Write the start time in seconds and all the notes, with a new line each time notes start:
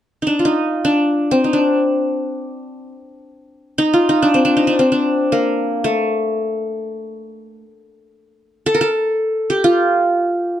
0.22 D#4
0.27 D4
0.39 F4
0.45 D#4
0.85 D4
1.31 C4
1.44 D#4
1.53 D4
3.78 D#4
3.94 F4
4.09 D#4
4.22 D4
4.34 C4
4.45 D4
4.57 D#4
4.67 D4
4.79 C4
4.92 D4
5.32 A#3
5.84 A3
8.66 A4
8.74 A#4
8.81 A4
9.50 G4
9.64 F4